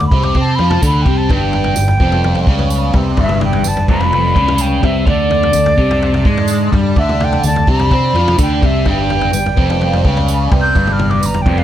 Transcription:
0.00 0.10 D2 medium
0.00 floor tom medium
0.07 0.25 B5 medium
0.11 0.33 C2 medium
0.11 0.35 C3 loud
0.11 kick loud
0.11 mid tom medium
0.23 0.37 D6 medium
0.23 floor tom medium
0.35 0.57 C3 medium
0.35 0.58 C4 medium
0.35 kick loud
0.35 floor tom medium
0.41 0.57 A5 medium
0.55 0.81 F2 medium
0.55 0.82 F3 medium
0.55 0.71 B5 medium
0.55 floor tom medium
0.70 0.83 A5 medium
0.70 floor tom medium
0.70 mid tom medium
0.82 1.04 D2 medium
0.82 1.05 D3 medium
0.82 kick medium
0.82 tambourine medium
0.86 1.04 B5 medium
1.02 1.19 G5 medium
1.02 kick loud
1.02 floor tom medium
1.06 1.28 C2 medium
1.06 1.29 C3 loud
1.18 1.31 A5 medium
1.29 1.73 G1 medium
1.29 1.76 G2 medium
1.29 5.04 G3 medium
1.29 5.04 B3 medium
1.29 5.04 B4 medium
1.29 5.04 D5 medium
1.29 kick loud
1.29 floor tom medium
1.34 2.69 G5 loud
1.53 floor tom medium
1.64 floor tom medium
1.76 1.99 G1 medium
1.76 1.95 G2 medium
1.76 tambourine medium
1.88 floor tom medium
2.00 2.44 F1 medium
2.00 2.46 F2 medium
2.00 kick loud
2.12 floor tom medium
2.24 floor tom medium
2.35 floor tom medium
2.47 2.91 C#2 medium
2.47 2.93 C#3 medium
2.47 kick loud
2.59 floor tom medium
2.70 tambourine medium
2.94 3.16 C2 loud
2.94 3.17 C3 loud
2.94 kick medium
2.94 floor tom medium
3.17 3.62 G1 medium
3.17 3.64 G2 loud
3.17 kick medium
3.17 floor tom medium
3.21 3.42 E5 medium
3.29 mid tom medium
3.41 3.69 G5 medium
3.41 floor tom medium
3.41 mid tom medium
3.53 floor tom medium
3.64 3.87 G1 medium
3.64 3.84 G2 medium
3.64 3.89 A5 medium
3.64 tambourine medium
3.77 floor tom medium
3.88 4.32 F1 medium
3.88 4.35 F2 loud
3.88 4.63 B5 medium
3.88 kick medium
3.88 mid tom medium
4.01 floor tom medium
4.13 floor tom medium
4.35 4.80 C#2 medium
4.35 4.82 C#3 medium
4.35 kick medium
4.35 floor tom medium
4.48 floor tom medium
4.48 mid tom medium
4.58 4.86 G5 medium
4.58 tambourine loud
4.82 5.05 C2 loud
4.82 5.06 C3 loud
4.82 5.07 E5 medium
4.82 kick loud
4.82 floor tom medium
5.05 5.51 D2 medium
5.05 8.81 D3 medium
5.05 5.52 D3 loud
5.05 8.81 D5 medium
5.05 6.46 D5 loud
5.05 8.81 A5 medium
5.05 kick medium
5.05 floor tom medium
5.31 floor tom medium
5.43 floor tom medium
5.53 5.76 D2 medium
5.53 5.73 D3 medium
5.53 tambourine loud
5.66 floor tom medium
5.77 6.22 C2 medium
5.77 6.24 C3 loud
5.77 kick loud
5.91 floor tom medium
6.02 floor tom medium
6.14 floor tom medium
6.24 6.69 G#2 medium
6.24 6.71 G#3 loud
6.24 kick loud
6.37 floor tom medium
6.48 tambourine medium
6.72 6.95 G2 medium
6.72 6.95 G3 loud
6.72 kick loud
6.72 floor tom medium
6.96 7.41 D2 medium
6.96 7.43 D3 medium
6.96 7.26 E5 medium
6.96 kick loud
6.96 floor tom medium
7.09 mid tom medium
7.20 7.45 G5 medium
7.20 floor tom medium
7.20 mid tom medium
7.33 floor tom medium
7.43 7.65 D2 medium
7.43 7.63 D3 medium
7.43 7.68 A5 medium
7.43 tambourine medium
7.56 floor tom medium
7.67 7.89 C2 medium
7.67 7.90 C3 loud
7.67 8.38 B5 medium
7.67 kick loud
7.67 mid tom medium
7.79 floor tom medium
7.91 8.13 C3 medium
7.91 8.14 C4 medium
7.91 kick loud
7.91 floor tom medium
8.13 8.36 F2 medium
8.13 8.37 F3 loud
8.13 floor tom medium
8.28 floor tom medium
8.28 mid tom medium
8.37 8.61 D2 medium
8.37 8.61 D3 loud
8.37 kick loud
8.37 tambourine medium
8.42 8.67 G5 medium
8.62 8.85 C2 medium
8.62 8.85 C3 medium
8.62 8.87 E5 medium
8.62 kick loud
8.62 floor tom medium
8.84 9.30 G1 medium
8.84 9.32 G2 medium
8.84 11.64 G3 medium
8.84 11.64 B3 medium
8.84 11.64 B4 medium
8.84 11.64 D5 medium
8.84 kick medium
8.84 floor tom medium
8.89 10.26 G5 loud
9.10 floor tom medium
9.21 floor tom medium
9.33 9.55 G1 medium
9.33 9.52 G2 medium
9.33 tambourine medium
9.46 floor tom medium
9.56 10.01 F1 medium
9.56 10.03 F2 medium
9.56 kick loud
9.70 floor tom medium
9.81 floor tom medium
9.93 floor tom medium
10.04 10.48 C#2 medium
10.04 10.51 C#3 medium
10.04 kick loud
10.17 floor tom medium
10.28 tambourine medium
10.52 10.74 C2 loud
10.52 10.74 C3 loud
10.52 kick loud
10.52 floor tom medium
10.62 10.94 G6 loud
10.75 11.19 G1 medium
10.75 11.21 G2 loud
10.75 kick loud
10.75 floor tom medium
10.87 mid tom medium
10.93 11.12 F6 medium
10.99 floor tom medium
10.99 mid tom medium
11.10 11.27 D6 medium
11.10 floor tom medium
11.23 11.44 G1 medium
11.23 11.42 G2 medium
11.23 11.43 A#5 medium
11.23 tambourine medium
11.34 floor tom medium
11.42 11.59 G5 medium
11.46 11.64 F1 medium
11.46 11.64 F2 loud
11.46 kick loud
11.46 mid tom medium
11.58 11.64 F5 medium
11.58 floor tom medium

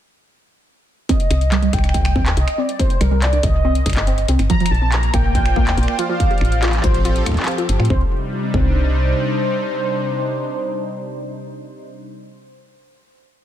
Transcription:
1.09 1.17 C4 loud
1.09 1.75 D#5 loud
1.09 kick loud
1.09 closed hi-hat medium
1.20 closed hi-hat soft
1.30 1.69 C2 loud
1.30 1.41 C4 medium
1.30 finger snap medium
1.30 closed hi-hat medium
1.41 closed hi-hat soft
1.52 1.56 G3 loud
1.52 clap loud
1.52 closed hi-hat medium
1.62 1.67 G3 loud
1.62 closed hi-hat soft
1.73 2.28 C2 medium
1.73 2.39 G5 loud
1.73 finger snap soft
1.73 kick loud
1.73 closed hi-hat medium
1.78 finger snap soft
1.84 1.88 D4 medium
1.84 finger snap soft
1.84 closed hi-hat soft
1.89 finger snap medium
1.94 kick loud
1.94 closed hi-hat medium
2.05 finger snap medium
2.05 closed hi-hat soft
2.16 2.23 C4 loud
2.16 kick loud
2.26 2.35 D#2 medium
2.26 clap loud
2.26 closed hi-hat soft
2.37 2.45 C2 loud
2.37 2.60 D#5 medium
2.37 closed hi-hat medium
2.48 finger snap medium
2.48 closed hi-hat soft
2.58 2.66 C4 loud
2.58 2.81 D5 medium
2.69 closed hi-hat soft
2.79 2.90 C4 medium
2.79 3.03 C5 loud
2.79 kick loud
2.79 closed hi-hat medium
2.90 closed hi-hat soft
3.01 3.40 C2 loud
3.01 3.05 G3 loud
3.01 3.24 A#4 medium
3.01 finger snap soft
3.01 closed hi-hat medium
3.11 3.16 G3 loud
3.22 3.45 D5 loud
3.22 clap loud
3.22 closed hi-hat medium
3.33 3.37 D4 medium
3.33 closed hi-hat soft
3.43 3.82 C2 loud
3.43 4.29 D#5 loud
3.43 kick loud
3.43 closed hi-hat medium
3.65 3.72 C4 loud
3.75 closed hi-hat soft
3.86 3.94 C2 loud
3.86 finger snap soft
3.86 kick loud
3.86 closed hi-hat medium
3.90 finger snap soft
3.90 closed hi-hat medium
3.93 finger snap soft
3.93 clap loud
3.93 closed hi-hat medium
3.97 4.25 G1 medium
3.97 closed hi-hat soft
4.07 4.15 C4 loud
4.07 closed hi-hat medium
4.18 closed hi-hat soft
4.28 4.37 C2 medium
4.28 4.39 C4 medium
4.28 closed hi-hat medium
4.39 4.47 G1 loud
4.39 finger snap soft
4.39 closed hi-hat soft
4.50 4.54 F3 loud
4.50 6.20 A#3 medium
4.50 4.72 A#5 loud
4.50 kick loud
4.50 closed hi-hat medium
4.60 4.65 F3 loud
4.60 closed hi-hat soft
4.66 finger snap medium
4.66 closed hi-hat medium
4.67 5.10 A#1 loud
4.67 4.94 A5 loud
4.67 closed hi-hat soft
4.75 closed hi-hat soft
4.81 4.86 C4 medium
4.81 6.88 F4 medium
4.92 5.15 A#5 loud
4.92 clap loud
4.92 closed hi-hat medium
5.03 closed hi-hat soft
5.13 5.68 A#1 loud
5.13 5.21 A#3 loud
5.13 6.81 C5 medium
5.13 6.00 G5 loud
5.13 finger snap medium
5.13 kick loud
5.13 closed hi-hat medium
5.26 6.88 D5 medium
5.35 kick loud
5.35 closed hi-hat medium
5.45 finger snap medium
5.45 closed hi-hat soft
5.56 5.64 A#3 loud
5.56 kick loud
5.67 5.75 D2 medium
5.67 clap loud
5.67 closed hi-hat soft
5.77 5.86 A#1 loud
5.77 5.88 A#3 medium
5.77 closed hi-hat medium
5.83 closed hi-hat soft
5.88 finger snap medium
5.99 6.03 F3 loud
5.99 6.83 F5 loud
5.99 closed hi-hat medium
6.09 6.14 F3 loud
6.20 7.90 F3 medium
6.20 kick loud
6.20 closed hi-hat medium
6.31 6.35 G4 medium
6.31 closed hi-hat soft
6.38 6.80 A1 loud
6.38 finger snap soft
6.38 closed hi-hat soft
6.45 7.90 C4 medium
6.45 closed hi-hat soft
6.52 closed hi-hat soft
6.56 7.90 G4 medium
6.62 6.70 F4 loud
6.62 clap loud
6.62 closed hi-hat medium
6.66 clap medium
6.70 clap medium
6.73 clap medium
6.73 closed hi-hat soft
6.77 clap medium
6.80 7.23 A1 loud
6.80 7.23 C5 medium
6.80 kick loud
6.80 clap soft
6.80 closed hi-hat medium
6.90 7.90 A4 medium
6.94 closed hi-hat soft
7.05 7.13 F4 loud
7.05 closed hi-hat medium
7.16 closed hi-hat soft
7.26 7.34 F4 medium
7.26 finger snap medium
7.26 kick soft
7.26 closed hi-hat medium
7.29 kick medium
7.32 kick medium
7.34 kick medium
7.34 clap medium
7.34 closed hi-hat soft
7.40 clap medium
7.42 clap medium
7.42 closed hi-hat soft
7.45 7.58 F5 medium
7.45 clap loud
7.45 closed hi-hat medium
7.51 closed hi-hat soft
7.58 7.63 F4 medium
7.58 closed hi-hat soft
7.69 7.77 G1 loud
7.69 closed hi-hat medium
7.80 7.88 A2 medium
7.80 7.87 F4 medium
7.80 finger snap soft
7.85 closed hi-hat soft
7.90 8.02 C2 medium
7.90 12.07 C3 medium
7.90 8.02 C4 medium
7.90 8.02 C5 medium
7.90 kick loud
7.96 12.07 G3 medium
8.03 12.07 D4 medium
8.09 12.07 D#4 medium
8.54 9.14 C2 loud
8.54 8.66 C4 medium
8.54 12.07 C5 loud
8.54 kick loud

